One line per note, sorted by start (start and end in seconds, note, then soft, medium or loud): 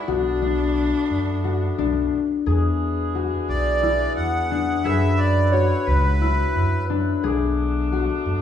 0.00 2.31 D4 medium
0.00 0.66 E4 medium
0.00 0.09 E4 soft
0.00 1.34 G#4 medium
0.08 0.91 B1 medium
0.08 2.31 A3 medium
0.08 2.31 B3 medium
0.08 2.12 D4 medium
0.08 1.44 F#4 medium
0.42 1.78 D4 medium
1.11 1.65 F#2 medium
1.44 3.14 F#4 medium
1.78 2.06 B1 medium
1.78 4.51 D4 medium
2.46 3.29 E2 medium
2.46 4.84 E3 medium
2.46 4.84 D4 soft
2.46 4.74 G#4 medium
2.46 4.84 G#4 medium
3.15 5.53 F#4 medium
3.49 4.04 B1 medium
3.49 4.13 D5 medium
3.83 6.21 E4 medium
4.16 4.72 E2 medium
4.16 4.87 F#5 medium
4.51 6.89 D4 medium
4.84 5.67 F#2 medium
4.84 7.21 F#3 medium
4.84 7.21 E4 medium
4.84 7.13 G#4 medium
4.84 7.21 B4 medium
4.84 5.20 E5 medium
5.17 5.53 D5 medium
5.51 7.92 F#4 medium
5.51 5.87 C#5 medium
5.86 6.42 C#2 medium
5.86 6.85 B4 medium
6.21 8.42 E4 medium
6.55 7.11 F#2 medium
6.90 8.42 D4 medium
7.23 8.06 B1 medium
7.23 8.42 A3 medium
7.23 8.42 B3 medium
7.23 8.42 D4 medium
7.23 8.42 G#4 medium
7.92 8.42 F#4 medium
8.26 8.42 F#2 medium